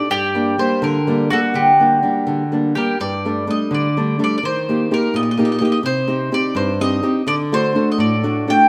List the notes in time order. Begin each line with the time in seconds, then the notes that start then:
Already playing: A4
0.10 G2 G4 D5
0.35 G3 A#3 D4
0.58 G3 A#3 D4 C5
0.82 D3 A#4
1.07 G3 A#3 D4
1.30 G3 A#3 D4 F#4 A4
1.54 D3 G4
1.80 G3 A#3 D4
2.03 G3 A#3 D4
2.27 D3
2.52 G3 A#3 D4
2.75 G3 A#3 D4 G4 A#4
3.00 G2 D5
3.25 G3 A3 D4
3.47 G3 A3 D4 D#5
3.71 D3 D5
3.97 G3 A3 D4
4.19 G3 A3 D4
4.24 D5
4.38 D5
4.43 D#3 C5
4.69 A#3 D#4 G4
4.91 A#3 D#4 G4 A#4
5.14 A#2 D#5
5.23 D#5
5.31 D#5
5.37 A#3 D#4 G4 D#5
5.45 D#5
5.52 D#5
5.59 A#3 D#4 G4 D#5
5.65 D#5
5.72 D#5
5.83 C3 C5
6.07 C4 D#4 G4
6.32 C4 D#4 G4 D5
6.55 G2 C5
6.80 C4 D#4 G4 D#5
7.02 C4 D#4 G4
7.27 D3 D5
7.52 A3 D4 F#4 C5
7.75 A3 D4 F#4
7.92 D#5
7.98 A2 D5
8.23 A3 D4 F#4
8.47 A3 D4 F#4 G5